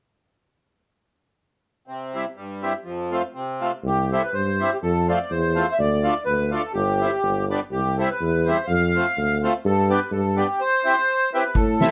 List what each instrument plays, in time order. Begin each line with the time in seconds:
1.88 accordion C3
2.14 accordion G3 C4 E4
2.36 accordion G2
2.63 accordion G3 C4 E4
2.84 accordion F2
3.11 accordion A3 C4 F4
3.35 accordion C3
3.61 accordion A3 C4 F4
3.84 tuba C2, accordion G4
4.12 accordion G3 C4 E4 A4
4.23 accordion B4
4.33 tuba G2, accordion C5
4.60 accordion G3 C4 E4
4.72 accordion G4
4.83 tuba F2, accordion A4
5.08 accordion A3 C4 F4 D5
5.30 tuba E2, accordion C5
5.55 accordion A3 C4 F4
5.72 accordion E5
5.79 tuba D2, accordion D5
6.04 accordion A3 D4 F4
6.25 tuba D2, accordion B4
6.51 accordion A3 D4 F4 A4
6.74 tuba G1, accordion G4
7.00 accordion G3 C4 E4
7.22 tuba G1
7.50 accordion G3 B3 D4
7.71 tuba C2, accordion G4
7.97 accordion G3 C4 E4 A4
8.10 accordion B4
8.21 tuba E2
8.45 accordion G3 C4 E4 C5
8.67 tuba F2, accordion F5
8.96 accordion A3 C4 F4
9.17 tuba D2
9.43 accordion A3 C4 F4
9.65 tuba G2, accordion A4
9.90 accordion B3 D4 G4 B4
10.11 tuba G2, accordion A4
10.37 accordion B3 D4 G4
10.60 accordion C5
10.85 accordion C4 E4 G4
11.34 accordion C4 E4 G4 B4
11.55 tuba A2, accordion A4, kick
11.81 accordion C4 E4 A4, snare